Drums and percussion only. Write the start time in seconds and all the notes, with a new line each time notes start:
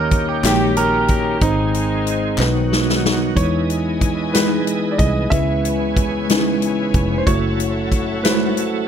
0.11 kick, closed hi-hat
0.44 snare, clap, closed hi-hat
0.77 closed hi-hat
1.08 kick, closed hi-hat
1.41 kick, closed hi-hat
1.74 closed hi-hat
2.07 closed hi-hat
2.38 snare, clap
2.73 snare
2.90 snare
3.06 snare
3.37 kick, closed hi-hat
3.70 closed hi-hat
4.01 kick, closed hi-hat
4.34 snare, closed hi-hat
4.67 closed hi-hat
4.99 kick, closed hi-hat
5.32 kick, closed hi-hat
5.65 closed hi-hat
5.97 kick, closed hi-hat
6.30 snare, closed hi-hat
6.62 closed hi-hat
6.94 kick, closed hi-hat
7.27 kick, closed hi-hat
7.60 closed hi-hat
7.92 kick, closed hi-hat
8.25 snare, closed hi-hat
8.57 closed hi-hat